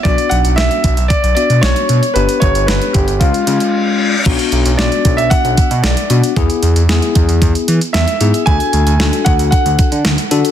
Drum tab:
CC |----------------|----------------|x---------------|----------------|
HH |xxxxxxxxxxxxxxxx|xxxxxxxxxxxx----|xxxxxxxxxxxxxxxx|xxxxxxxxxxxxxxxx|
SD |----o-------o---|----o-----------|----o-------o---|----o-------o---|
BD |o-----o-o-------|--o---o-o-------|o-----o-o-o-----|o-----o-o-------|

CC |----------------|
HH |xxxxxxxxxxxxxxxx|
SD |----o-------o---|
BD |o-----o-o-o-----|